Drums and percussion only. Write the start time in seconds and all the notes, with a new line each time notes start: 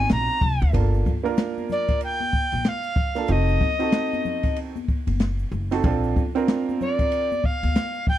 0.09 snare, hi-hat pedal, ride, shaker
0.29 shaker
0.41 kick, high conga, low conga, shaker
0.61 ride, shaker
0.73 kick, ride, shaker
0.94 shaker
1.06 kick, high conga, low conga, shaker
1.26 ride, shaker
1.37 snare, hi-hat pedal, ride, shaker
1.58 high conga, shaker
1.70 low conga, shaker
1.88 kick, ride, shaker
2.01 ride, shaker
2.20 high conga, shaker
2.33 kick, shaker
2.52 ride, high conga, shaker
2.64 snare, hi-hat pedal, ride, shaker
2.83 shaker
2.96 kick, low conga, shaker
3.15 snare, ride, shaker
3.28 ride, shaker
3.48 shaker
3.61 kick, high conga, low conga, shaker
3.80 ride, shaker
3.92 snare, hi-hat pedal, ride, shaker
4.13 high conga, shaker
4.25 low conga, shaker
4.43 kick, ride, shaker
4.56 ride, shaker
4.76 high conga, shaker
4.88 kick, shaker
5.07 ride, high conga, shaker
5.20 snare, hi-hat pedal, ride, shaker
5.39 shaker
5.52 low conga, shaker
5.71 snare, ride, shaker
5.83 kick, ride, shaker
6.04 shaker
6.16 kick, high conga, low conga, shaker
6.35 ride, shaker
6.48 snare, hi-hat pedal, ride, shaker
6.69 high conga, shaker
6.81 low conga, shaker
6.99 kick, ride, shaker
7.12 ride, shaker
7.32 high conga, shaker
7.44 kick, shaker
7.63 ride, high conga, shaker
7.75 snare, hi-hat pedal, ride, shaker
7.95 shaker
8.07 kick, low conga, shaker